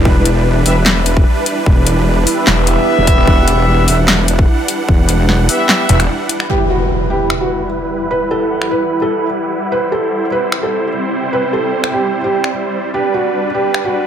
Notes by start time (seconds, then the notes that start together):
Already playing: G3 D4 E4 B4 E5
0.05 E1 B4, kick
0.25 closed hi-hat
0.66 E1 B3 G4 E5, open hi-hat
0.86 B3 G4 E5, finger snap, snare, clap
1.06 closed hi-hat
1.17 kick
1.46 closed hi-hat
1.66 E1, kick
1.87 closed hi-hat
2.27 B3 G4 E5, open hi-hat
2.47 E1, snare, clap
2.67 closed hi-hat
2.98 E1
3.07 kick, closed hi-hat
3.18 E1
3.27 E1 F#5, kick
3.48 closed hi-hat
3.88 E1 B3 G4 E5, open hi-hat
4.08 finger snap, snare, clap
4.28 closed hi-hat
4.39 kick
4.68 closed hi-hat
4.89 E1, kick
5.09 closed hi-hat
5.29 snare
5.49 B3 G4 E5, open hi-hat
5.69 snare, clap
5.89 E1 B3 G4 E5, closed hi-hat
6.00 finger snap, closed hi-hat
6.29 closed hi-hat
6.40 finger snap
6.50 G3 E4 G4 B4, impact
6.70 F#4
6.77 B5
7.10 G4
7.19 F#5
7.30 finger snap
7.41 F#4
8.11 B4
8.31 A4
8.62 finger snap
8.71 B4
9.02 A4
9.72 C4 B4 C5
9.92 A4
10.32 B4
10.52 finger snap
10.63 A4 D5
11.33 B4
11.53 A4
11.84 finger snap
11.93 G4
12.24 G4
12.44 finger snap
12.94 D4 G4 B4
13.14 F#4
13.27 A5
13.54 G4
13.74 finger snap
13.85 F#4